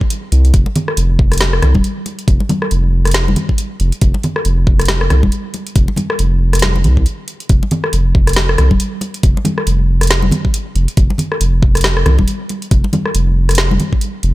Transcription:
0.01 kick medium
0.10 closed hi-hat medium
0.32 0.52 C2 medium
0.32 closed hi-hat medium
0.45 closed hi-hat soft
0.54 0.65 F1 loud
0.54 kick loud
0.54 closed hi-hat medium
0.66 muted conga medium
0.76 closed hi-hat soft
0.76 low conga medium
0.88 cross-stick medium
0.97 1.61 F1 medium
0.97 closed hi-hat medium
1.19 kick loud
1.32 cross-stick soft
1.32 closed hi-hat soft
1.33 closed hi-hat medium
1.38 snare loud
1.38 closed hi-hat medium
1.41 closed hi-hat medium
1.41 muted conga medium
1.53 cross-stick medium
1.62 1.74 C2 loud
1.62 cross-stick medium
1.62 closed hi-hat soft
1.62 low conga medium
1.75 1.84 D#1 loud
1.75 kick medium
1.75 high conga loud
1.84 closed hi-hat medium
2.06 closed hi-hat medium
2.06 muted conga soft
2.19 closed hi-hat soft
2.28 2.39 F1 loud
2.28 kick loud
2.28 closed hi-hat medium
2.40 muted conga medium
2.49 closed hi-hat soft
2.49 high conga medium
2.49 low conga medium
2.62 cross-stick medium
2.71 3.35 F1 medium
2.71 closed hi-hat medium
3.05 cross-stick medium
3.05 closed hi-hat soft
3.07 closed hi-hat medium
3.11 snare loud
3.11 closed hi-hat medium
3.14 closed hi-hat medium
3.28 high conga medium
3.36 closed hi-hat soft
3.36 low conga medium
3.49 kick medium
3.58 closed hi-hat medium
3.80 3.92 F1 loud
3.80 closed hi-hat medium
3.92 closed hi-hat soft
4.01 4.13 F1 loud
4.01 kick loud
4.01 closed hi-hat medium
4.14 muted conga medium
4.23 closed hi-hat soft
4.23 low conga medium
4.36 cross-stick medium
4.45 5.09 F1 medium
4.45 closed hi-hat medium
4.67 kick loud
4.79 cross-stick medium
4.79 closed hi-hat soft
4.81 closed hi-hat medium
4.85 snare loud
4.85 closed hi-hat medium
4.88 closed hi-hat medium
4.88 muted conga medium
5.01 cross-stick medium
5.10 5.22 C2 loud
5.10 cross-stick medium
5.10 closed hi-hat soft
5.10 low conga medium
5.23 5.31 D#1 loud
5.23 kick medium
5.23 high conga medium
5.32 closed hi-hat medium
5.54 closed hi-hat medium
5.54 muted conga medium
5.67 closed hi-hat soft
5.76 5.87 F1 loud
5.76 kick loud
5.76 closed hi-hat medium
5.88 muted conga medium
5.96 closed hi-hat medium
5.96 high conga medium
5.96 low conga medium
6.10 cross-stick medium
6.19 6.86 F1 medium
6.19 closed hi-hat medium
6.53 cross-stick medium
6.53 closed hi-hat soft
6.55 closed hi-hat medium
6.59 snare loud
6.59 closed hi-hat medium
6.62 closed hi-hat medium
6.62 high conga medium
6.76 muted conga soft
6.76 high conga medium
6.84 7.06 C2 medium
6.84 closed hi-hat medium
6.84 low conga medium
6.97 kick medium
7.06 closed hi-hat medium
7.28 closed hi-hat medium
7.40 closed hi-hat soft
7.49 7.61 F1 loud
7.49 kick loud
7.49 closed hi-hat medium
7.63 muted conga medium
7.71 closed hi-hat medium
7.71 low conga medium
7.84 cross-stick medium
7.93 8.57 F1 medium
7.93 closed hi-hat medium
8.15 kick loud
8.27 cross-stick medium
8.27 closed hi-hat soft
8.29 closed hi-hat medium
8.33 snare loud
8.33 closed hi-hat medium
8.36 closed hi-hat medium
8.36 muted conga medium
8.49 cross-stick medium
8.58 8.70 C2 loud
8.58 cross-stick medium
8.58 closed hi-hat medium
8.58 low conga medium
8.71 8.79 D#1 medium
8.71 kick medium
8.71 high conga medium
8.80 closed hi-hat medium
9.01 closed hi-hat medium
9.01 muted conga medium
9.14 closed hi-hat soft
9.23 9.35 F1 loud
9.23 kick loud
9.23 closed hi-hat medium
9.37 muted conga medium
9.45 closed hi-hat medium
9.45 high conga medium
9.45 low conga medium
9.58 cross-stick medium
9.67 10.31 F1 medium
9.67 closed hi-hat medium
10.01 cross-stick medium
10.01 closed hi-hat soft
10.03 closed hi-hat medium
10.07 snare loud
10.07 closed hi-hat medium
10.11 closed hi-hat medium
10.22 high conga medium
10.31 closed hi-hat medium
10.31 low conga medium
10.45 kick medium
10.54 closed hi-hat medium
10.75 10.87 F1 loud
10.75 closed hi-hat medium
10.88 closed hi-hat soft
10.97 11.09 F1 loud
10.97 kick loud
10.97 closed hi-hat medium
11.10 muted conga medium
11.18 closed hi-hat medium
11.18 low conga medium
11.32 cross-stick medium
11.41 12.05 F1 medium
11.41 closed hi-hat medium
11.63 kick loud
11.75 cross-stick medium
11.75 closed hi-hat soft
11.77 closed hi-hat medium
11.81 snare loud
11.81 closed hi-hat medium
11.81 muted conga medium
11.97 cross-stick medium
12.06 12.18 C2 loud
12.06 cross-stick medium
12.06 closed hi-hat soft
12.06 low conga medium
12.18 12.27 D#1 loud
12.18 kick medium
12.18 high conga loud
12.28 closed hi-hat medium
12.49 closed hi-hat medium
12.49 muted conga medium
12.62 closed hi-hat soft
12.71 12.83 F1 loud
12.71 kick loud
12.71 closed hi-hat medium
12.84 muted conga medium
12.93 closed hi-hat medium
12.93 high conga loud
12.93 low conga medium
13.06 cross-stick medium
13.15 13.79 F1 medium
13.15 closed hi-hat medium
13.49 cross-stick soft
13.49 closed hi-hat soft
13.51 closed hi-hat medium
13.55 snare loud
13.55 closed hi-hat medium
13.58 closed hi-hat medium
13.71 high conga loud
13.80 closed hi-hat soft
13.80 low conga medium
13.93 kick medium
14.01 closed hi-hat medium
14.23 14.34 F1 loud
14.23 closed hi-hat medium

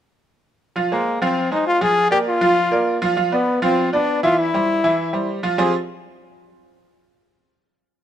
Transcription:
0.76 0.88 F3 medium
0.76 0.88 F4 medium
0.76 0.88 F5 medium
0.92 1.16 G#3 medium
0.92 1.20 A#3 medium
0.92 1.16 G#4 medium
0.92 1.16 C5 medium
1.22 1.46 F3 medium
1.22 1.50 C4 medium
1.22 1.46 F4 medium
1.22 1.46 F5 medium
1.51 1.76 G#3 medium
1.51 1.66 D#4 medium
1.51 1.76 G#4 medium
1.51 1.76 C5 medium
1.67 1.83 F4 loud
1.81 2.06 F3 medium
1.81 2.06 F4 medium
1.81 2.11 G#4 loud
1.81 2.06 F5 medium
2.11 2.36 A#3 medium
2.11 2.18 G4 loud
2.11 2.36 A#4 medium
2.11 2.36 D5 medium
2.28 2.99 F4 medium
2.41 2.66 F3 medium
2.41 2.66 F4 medium
2.41 2.66 F5 medium
2.71 2.96 A#3 medium
2.71 2.97 A#4 medium
2.71 2.97 D5 medium
3.02 3.14 F3 medium
3.02 3.14 F4 medium
3.02 3.15 F5 medium
3.17 3.29 F3 medium
3.17 3.29 F4 medium
3.17 3.30 F5 medium
3.32 3.57 B3 medium
3.32 3.61 B3 medium
3.32 3.57 B4 medium
3.32 3.57 D5 medium
3.62 3.87 F3 medium
3.62 3.91 C4 medium
3.62 3.87 F4 medium
3.62 3.87 F5 medium
3.93 4.18 B3 medium
3.93 4.21 D4 loud
3.93 4.18 B4 medium
3.93 4.18 D5 medium
4.23 4.48 E3 medium
4.23 4.48 E4 medium
4.23 4.40 F4 loud
4.23 4.48 E5 medium
4.39 5.29 E4 loud
4.54 4.78 G3 medium
4.54 4.79 G4 medium
4.54 4.79 C5 medium
4.84 5.08 E3 medium
4.84 5.08 E4 medium
4.84 5.09 E5 medium
5.13 5.38 G3 medium
5.13 5.38 G4 medium
5.13 5.38 C5 medium
5.43 5.56 F3 medium
5.43 5.56 F4 medium
5.43 5.56 F5 medium
5.58 5.72 F3 medium
5.58 5.72 C4 medium
5.58 5.72 F4 medium
5.58 5.72 G4 medium
5.58 5.73 G#4 medium
5.58 5.73 C5 medium

